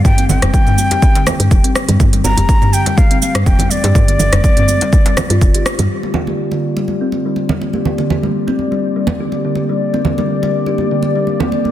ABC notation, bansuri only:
X:1
M:4/4
L:1/8
Q:"Swing 16ths" 1/4=123
K:Gm
V:1 name="Bansuri"
g g6 z | z b2 g f f g d- | d6- d z | z8 |
z8 | z8 |]